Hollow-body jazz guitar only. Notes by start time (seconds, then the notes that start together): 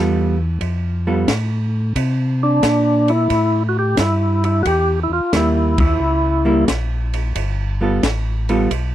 Already playing: G3 B3 F4 A4
1.07 G3 B3 F4 A4
5.33 G3 A#3 E4
6.45 G3 A#3 E4
7.81 G3 B3 F4 A4
8.49 G3 B3 F4 A4